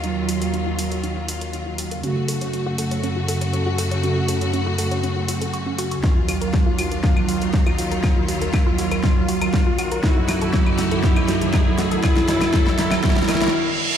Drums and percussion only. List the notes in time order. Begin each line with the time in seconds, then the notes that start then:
0.04 closed hi-hat
0.29 open hi-hat
0.42 closed hi-hat
0.54 closed hi-hat
0.79 open hi-hat
0.92 closed hi-hat
1.04 closed hi-hat
1.28 open hi-hat
1.41 closed hi-hat
1.53 closed hi-hat
1.78 open hi-hat
1.91 closed hi-hat
2.03 closed hi-hat
2.28 open hi-hat
2.41 closed hi-hat
2.53 closed hi-hat
2.78 open hi-hat
2.91 closed hi-hat
3.03 closed hi-hat
3.28 open hi-hat
3.41 closed hi-hat
3.53 closed hi-hat
3.78 open hi-hat
3.91 closed hi-hat
4.03 closed hi-hat
4.28 open hi-hat
4.41 closed hi-hat
4.53 closed hi-hat
4.78 open hi-hat
4.91 closed hi-hat
5.03 closed hi-hat
5.28 open hi-hat
5.42 closed hi-hat
5.54 closed hi-hat
5.79 open hi-hat
5.91 closed hi-hat
6.03 kick, snare, closed hi-hat
6.29 open hi-hat, claves
6.42 closed hi-hat
6.54 kick, snare, closed hi-hat
6.79 open hi-hat, claves
6.92 closed hi-hat
7.04 kick, snare, closed hi-hat
7.17 claves
7.29 open hi-hat
7.42 closed hi-hat
7.54 kick, snare, closed hi-hat
7.67 claves
7.79 open hi-hat
7.92 closed hi-hat
8.04 kick, snare, closed hi-hat, claves
8.29 open hi-hat
8.42 closed hi-hat
8.54 kick, snare, closed hi-hat, claves
8.78 open hi-hat
8.91 closed hi-hat, claves
9.03 kick, snare, closed hi-hat
9.29 open hi-hat
9.41 closed hi-hat, claves
9.54 kick, snare, closed hi-hat
9.79 open hi-hat, claves
9.92 closed hi-hat
10.04 kick, snare, closed hi-hat
10.29 snare, open hi-hat, claves
10.42 closed hi-hat
10.54 kick, snare, closed hi-hat
10.66 claves
10.79 snare, open hi-hat
10.91 closed hi-hat
11.03 kick, snare, closed hi-hat
11.16 claves
11.28 snare, open hi-hat
11.41 closed hi-hat
11.54 kick, snare, closed hi-hat, claves
11.78 snare, open hi-hat
11.91 closed hi-hat
12.03 kick, snare, closed hi-hat, claves
12.16 snare
12.28 snare, open hi-hat
12.41 snare, closed hi-hat, claves
12.54 kick, snare, closed hi-hat
12.66 snare
12.79 snare, open hi-hat
12.91 snare, closed hi-hat, claves
13.04 kick, snare, closed hi-hat
13.10 snare
13.16 snare
13.22 snare
13.29 snare, open hi-hat, claves
13.35 snare
13.41 snare, closed hi-hat
13.47 snare